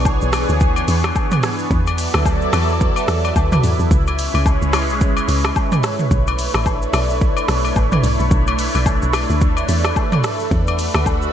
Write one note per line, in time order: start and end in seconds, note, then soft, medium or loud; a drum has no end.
0.00 0.18 B1 loud
0.00 1.67 E3 medium
0.00 3.87 B3 medium
0.00 1.67 D4 medium
0.00 1.69 G#4 medium
0.00 1.67 C#5 medium
0.05 kick medium
0.05 low woodblock medium
0.05 shaker medium
0.21 0.45 B1 medium
0.21 shaker medium
0.33 cross-stick loud
0.33 open hi-hat medium
0.33 high agogo medium
0.33 shaker loud
0.49 0.83 D2 medium
0.49 shaker medium
0.61 kick loud
0.61 shaker medium
0.76 high agogo medium
0.76 shaker medium
0.88 1.12 E2 loud
0.88 open hi-hat medium
0.88 shaker medium
1.04 cross-stick loud
1.04 high agogo medium
1.04 shaker soft
1.16 kick loud
1.16 low woodblock medium
1.16 shaker medium
1.31 mid tom loud
1.31 high agogo medium
1.31 shaker medium
1.43 cross-stick loud
1.43 open hi-hat medium
1.43 shaker loud
1.59 shaker medium
1.70 2.08 E2 loud
1.70 3.88 F#3 medium
1.70 6.07 E4 medium
1.70 3.88 A4 medium
1.70 3.88 D5 medium
1.70 kick loud
1.70 shaker medium
1.87 high agogo medium
1.87 shaker medium
1.98 open hi-hat medium
1.98 shaker loud
2.14 2.48 D2 loud
2.14 cross-stick loud
2.14 high agogo medium
2.14 shaker soft
2.26 kick medium
2.26 low woodblock medium
2.26 shaker medium
2.42 shaker medium
2.53 2.91 E2 loud
2.53 cross-stick loud
2.53 open hi-hat medium
2.53 high agogo medium
2.53 shaker loud
2.69 shaker medium
2.81 kick loud
2.81 shaker medium
2.96 high agogo medium
2.96 shaker medium
3.08 3.32 E2 loud
3.08 cross-stick loud
3.08 open hi-hat medium
3.08 shaker medium
3.24 high agogo medium
3.24 shaker soft
3.36 3.60 D2 loud
3.36 kick medium
3.36 low woodblock medium
3.36 shaker medium
3.52 mid tom loud
3.52 high agogo medium
3.52 shaker medium
3.63 3.77 E2 medium
3.63 open hi-hat medium
3.63 shaker loud
3.79 3.89 E2 medium
3.79 shaker medium
3.90 4.28 C#2 loud
3.90 6.09 G#3 medium
3.90 6.09 C#4 medium
3.90 10.47 B4 medium
3.90 10.47 C#5 medium
3.90 kick loud
3.90 shaker medium
4.07 high agogo medium
4.07 shaker medium
4.19 open hi-hat medium
4.19 shaker loud
4.34 4.58 C#2 loud
4.34 high agogo medium
4.34 shaker medium
4.46 kick medium
4.46 low woodblock medium
4.46 shaker medium
4.62 4.91 C#2 medium
4.62 shaker medium
4.73 cross-stick loud
4.73 open hi-hat medium
4.73 high agogo medium
4.73 shaker loud
4.89 5.23 B1 medium
4.89 shaker medium
5.01 kick loud
5.01 shaker medium
5.17 high agogo medium
5.17 shaker medium
5.28 5.52 C#2 loud
5.28 open hi-hat medium
5.28 shaker medium
5.45 cross-stick loud
5.45 high agogo medium
5.45 shaker soft
5.56 kick medium
5.56 low woodblock medium
5.56 shaker medium
5.72 mid tom medium
5.72 high agogo medium
5.72 shaker medium
5.83 cross-stick loud
5.83 open hi-hat medium
5.83 shaker loud
5.99 mid tom medium
5.99 shaker medium
6.11 6.48 B1 loud
6.11 11.33 A3 medium
6.11 11.33 D4 medium
6.11 10.48 E4 medium
6.11 kick loud
6.11 shaker medium
6.27 high agogo medium
6.27 shaker medium
6.39 open hi-hat medium
6.39 shaker loud
6.54 6.88 A1 medium
6.54 cross-stick loud
6.54 high agogo medium
6.54 shaker medium
6.66 kick loud
6.66 low woodblock medium
6.66 shaker medium
6.82 shaker medium
6.93 7.31 B1 loud
6.93 cross-stick loud
6.93 open hi-hat medium
6.93 high agogo medium
6.93 shaker loud
7.10 shaker medium
7.21 kick loud
7.21 shaker medium
7.37 high agogo medium
7.37 shaker medium
7.48 7.72 B1 loud
7.48 cross-stick loud
7.48 open hi-hat medium
7.48 shaker medium
7.65 high agogo medium
7.65 shaker soft
7.76 8.00 A1 medium
7.76 kick medium
7.76 low woodblock medium
7.76 shaker medium
7.92 mid tom medium
7.92 high agogo medium
7.92 shaker medium
8.04 8.17 B1 loud
8.04 open hi-hat medium
8.04 shaker loud
8.20 8.30 B1 medium
8.20 shaker medium
8.31 8.69 B1 loud
8.31 kick loud
8.31 shaker medium
8.47 high agogo medium
8.47 shaker medium
8.59 open hi-hat medium
8.59 shaker loud
8.74 8.98 B1 loud
8.74 high agogo medium
8.74 shaker medium
8.86 kick medium
8.86 low woodblock medium
8.86 shaker medium
9.02 9.26 B1 medium
9.02 shaker medium
9.13 cross-stick medium
9.13 open hi-hat medium
9.13 high agogo medium
9.13 shaker loud
9.30 9.63 D2 loud
9.30 shaker medium
9.41 kick loud
9.41 shaker medium
9.57 high agogo medium
9.57 shaker medium
9.69 9.92 E2 loud
9.69 open hi-hat medium
9.69 shaker medium
9.85 cross-stick loud
9.85 high agogo medium
9.85 shaker soft
9.96 kick medium
9.96 low woodblock medium
9.96 shaker medium
10.12 mid tom loud
10.12 high agogo medium
10.12 shaker medium
10.24 cross-stick loud
10.24 open hi-hat medium
10.24 shaker loud
10.40 shaker medium
10.51 10.89 E2 loud
10.51 11.33 F#4 medium
10.51 11.33 B4 medium
10.51 11.33 E5 medium
10.51 kick loud
10.51 shaker medium
10.67 high agogo medium
10.67 shaker medium
10.79 open hi-hat medium
10.79 shaker loud
10.94 11.28 D2 loud
10.94 cross-stick loud
10.94 high agogo medium
10.94 shaker medium
11.06 kick medium
11.06 low woodblock medium
11.06 shaker medium
11.22 shaker medium